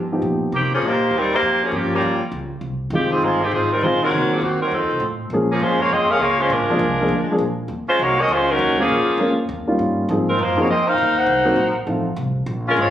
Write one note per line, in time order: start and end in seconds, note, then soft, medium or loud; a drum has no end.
0.00 0.21 G2 medium
0.12 0.51 F3 medium
0.12 0.51 B3 soft
0.12 0.51 D#4 soft
0.12 0.52 G4 medium
0.22 0.52 A#2 medium
0.52 0.81 C3 medium
0.52 0.71 D#3 medium
0.52 0.71 A#3 medium
0.52 0.71 C4 medium
0.52 0.71 G4 medium
0.74 0.84 F3 medium
0.74 0.84 A#3 medium
0.74 0.84 C#4 medium
0.74 0.84 G#4 medium
0.82 1.10 A#2 medium
0.86 1.15 A#3 medium
0.86 1.15 D#4 medium
0.86 1.15 G4 medium
0.86 1.15 C5 medium
1.11 1.41 D#2 medium
1.18 1.34 G3 medium
1.18 1.34 C4 medium
1.18 1.34 D#4 medium
1.18 1.34 A#4 medium
1.34 1.61 A#3 medium
1.34 1.61 D#4 medium
1.34 1.61 G4 medium
1.34 1.61 C5 medium
1.41 1.71 F2 medium
1.64 1.73 F3 medium
1.64 1.74 A#3 medium
1.64 1.73 C#4 medium
1.64 1.75 G#4 medium
1.72 2.01 G2 medium
1.72 2.17 F3 soft
1.72 1.92 F3 medium
1.72 2.17 A#3 soft
1.72 1.92 A#3 medium
1.72 2.17 C#4 soft
1.72 1.92 C#4 medium
1.72 2.18 G4 medium
1.72 1.92 G4 medium
1.94 2.20 G3 medium
1.94 2.20 A#3 medium
1.94 2.20 C#4 medium
1.94 2.20 F4 medium
2.01 2.19 F2 medium
2.20 muted upright bass stroke soft
2.32 2.60 C#2 medium
2.61 2.90 C2 medium
2.90 3.20 F1 medium
2.90 3.37 D#3 medium
2.90 3.37 G#3 medium
2.90 3.10 G#3 medium
2.90 3.37 C4 soft
2.90 3.38 F4 medium
2.95 3.11 D#3 medium
2.95 3.10 C4 medium
2.95 3.10 G4 medium
3.11 3.23 F3 medium
3.11 3.23 C4 medium
3.11 3.23 D#4 medium
3.11 3.23 G#4 medium
3.22 3.51 G1 medium
3.22 3.42 G#3 medium
3.22 3.42 D#4 medium
3.22 3.42 F4 medium
3.22 3.42 C5 medium
3.43 3.54 D#3 medium
3.43 3.53 G#3 medium
3.43 3.54 C4 medium
3.43 3.54 G4 medium
3.51 3.80 G#1 medium
3.51 3.70 F3 medium
3.51 3.70 C4 medium
3.51 3.70 D#4 medium
3.51 3.70 G#4 medium
3.71 3.83 G3 medium
3.71 3.83 C4 medium
3.71 3.83 D#4 medium
3.71 3.82 A#4 medium
3.81 4.10 A#1 medium
3.81 4.11 D#3 soft
3.81 4.12 G#3 soft
3.81 4.01 G#3 medium
3.81 4.12 C4 soft
3.81 4.01 D#4 medium
3.81 4.01 F4 medium
3.81 4.13 F4 medium
3.81 4.01 C5 medium
4.02 4.30 F#3 medium
4.02 4.29 C4 medium
4.02 4.29 D#4 medium
4.02 4.29 A#4 medium
4.11 4.28 C2 medium
4.11 4.57 D#3 medium
4.11 4.57 A#3 soft
4.11 4.57 C4 soft
4.11 4.57 F#4 medium
4.29 4.43 F3 medium
4.29 4.42 A#3 medium
4.29 4.43 C#4 medium
4.29 4.43 G#4 medium
4.29 muted upright bass stroke soft
4.41 4.71 D#2 medium
4.41 4.59 D#3 medium
4.41 4.60 A#3 medium
4.41 4.60 C4 medium
4.41 4.59 F#4 medium
4.61 4.72 F#3 medium
4.61 4.72 C4 medium
4.61 4.71 D#4 medium
4.61 4.72 A#4 medium
4.71 4.81 F2 medium
4.71 5.02 F3 medium
4.71 5.02 C4 medium
4.71 5.02 D#4 medium
4.71 5.02 A4 medium
4.81 4.90 D#2 soft
4.91 4.99 C2 medium
5.00 5.29 A2 medium
5.30 5.59 A#2 medium
5.30 6.15 F3 medium
5.30 6.15 G#3 medium
5.30 6.15 A#3 soft
5.30 6.15 C#4 medium
5.34 6.15 G#4 medium
5.51 5.61 F3 medium
5.51 5.61 A#3 medium
5.51 5.62 C#4 medium
5.51 5.62 G#4 medium
5.59 5.89 F#2 medium
5.59 5.80 G#3 medium
5.59 5.80 C#4 medium
5.59 5.80 F4 medium
5.59 5.80 C5 medium
5.81 5.92 A#3 medium
5.81 5.90 F4 medium
5.81 5.91 G#4 medium
5.81 5.92 C#5 medium
5.89 6.07 F2 medium
5.89 6.09 C4 medium
5.89 6.09 F4 medium
5.89 6.09 G#4 medium
5.89 6.09 D#5 medium
6.09 6.21 C#4 medium
6.09 6.20 G#4 medium
6.09 6.22 A#4 medium
6.09 6.22 F5 medium
6.09 muted upright bass stroke soft
6.19 6.49 C#2 medium
6.19 6.39 A#3 medium
6.19 6.38 F4 medium
6.19 6.39 G#4 medium
6.19 6.39 C#5 medium
6.39 6.52 G#3 medium
6.39 6.51 C#4 medium
6.39 6.51 F4 medium
6.39 6.52 C5 medium
6.50 6.59 A#1 medium
6.50 7.41 D4 medium
6.50 7.41 F4 medium
6.54 7.42 G#3 medium
6.54 7.42 A#4 medium
6.59 6.69 G#1 medium
6.69 6.79 F1 medium
6.69 6.80 F3 medium
6.69 6.80 G#3 medium
6.69 6.80 A#3 medium
6.69 6.80 D4 medium
6.69 6.81 G#4 medium
6.79 7.08 C2 medium
7.00 7.10 F3 medium
7.00 7.10 G#3 medium
7.00 7.10 A#3 medium
7.00 7.11 D4 medium
7.00 7.11 G#4 medium
7.08 7.26 D2 medium
7.27 7.40 F3 medium
7.27 muted upright bass stroke soft
7.32 7.41 G#3 medium
7.32 7.41 A#3 medium
7.32 7.41 D4 medium
7.32 7.41 G#4 medium
7.38 7.67 A#1 medium
7.68 7.86 D#2 medium
7.87 8.00 G#3 medium
7.87 8.00 C#4 medium
7.87 7.99 F4 medium
7.87 8.00 C5 loud
7.87 muted upright bass stroke soft
7.99 8.28 C2 medium
7.99 8.19 A#3 medium
7.99 8.19 D#4 medium
7.99 8.19 F#4 medium
7.99 8.19 C#5 medium
8.20 8.31 C#4 medium
8.20 8.31 F#4 medium
8.20 8.31 A#4 medium
8.20 8.31 D#5 loud
8.28 8.58 C#2 medium
8.28 8.49 C5 loud
8.32 8.49 G#3 medium
8.32 8.49 C#4 medium
8.32 8.49 F4 medium
8.51 8.79 F#3 medium
8.51 8.79 C#4 medium
8.51 8.79 D#4 medium
8.51 8.79 A#4 loud
8.59 8.88 D#2 medium
8.78 9.34 F3 medium
8.78 8.88 G#3 medium
8.78 8.88 A#3 medium
8.78 9.34 A#3 medium
8.78 8.89 C#4 medium
8.78 9.34 C#4 medium
8.78 8.89 F4 medium
8.78 9.35 G#4 medium
8.78 8.89 A#4 medium
8.88 9.05 A#1 medium
9.07 muted upright bass stroke soft
9.17 9.47 F2 medium
9.17 9.36 G#3 medium
9.17 9.35 A#3 medium
9.17 9.36 C#4 medium
9.17 9.36 F4 medium
9.17 9.36 A#4 medium
9.49 9.78 D#2 medium
9.67 10.06 G3 medium
9.67 10.06 A#3 medium
9.67 10.07 C#4 medium
9.67 10.07 D#4 medium
9.67 10.07 F4 medium
9.79 10.08 G2 medium
10.09 10.37 G#2 medium
10.09 10.25 F3 medium
10.09 10.26 A#3 soft
10.09 10.26 C4 medium
10.09 10.26 D#4 medium
10.09 10.26 G#4 medium
10.30 10.39 F3 medium
10.30 10.39 C4 medium
10.30 10.40 D#4 medium
10.30 10.39 A#4 medium
10.38 10.67 F#2 medium
10.38 10.58 D#4 medium
10.38 10.58 F4 medium
10.38 10.58 C5 medium
10.42 10.58 A#3 medium
10.57 10.67 F3 medium
10.57 10.67 A#3 medium
10.57 10.67 C4 medium
10.57 10.68 D#4 medium
10.57 10.70 D#4 medium
10.57 10.68 G#4 medium
10.57 10.70 C#5 medium
10.61 10.70 A#3 medium
10.61 10.70 F#4 medium
10.67 10.97 F2 medium
10.67 10.87 D#5 loud
10.71 10.87 C4 medium
10.71 10.87 F4 medium
10.71 10.87 A#4 medium
10.87 11.15 D#4 medium
10.87 11.15 A#4 medium
10.87 11.15 C5 medium
10.87 11.17 F5 loud
10.98 11.26 D#2 medium
11.16 11.76 D#4 medium
11.16 11.76 A#4 medium
11.16 11.76 C5 medium
11.16 11.76 F#5 loud
11.26 11.55 C2 medium
11.45 11.56 F#3 medium
11.45 11.56 A#3 medium
11.45 11.56 C4 medium
11.45 11.56 D#4 medium
11.45 11.56 A#4 medium
11.56 11.86 A#1 medium
11.86 12.16 A1 medium
11.86 12.03 F3 soft
11.86 12.03 A3 soft
11.86 12.03 C4 soft
11.86 12.03 D#4 soft
11.86 12.04 F4 medium
12.16 12.46 C2 medium
12.46 12.76 A#1 medium
12.68 12.78 G#3 medium
12.68 12.78 C#4 medium
12.68 12.78 F4 medium
12.68 12.78 A#4 medium
12.76 12.90 G#1 medium
12.81 12.90 G#3 medium
12.81 12.90 C4 medium
12.81 12.90 F4 medium
12.81 12.90 C#5 loud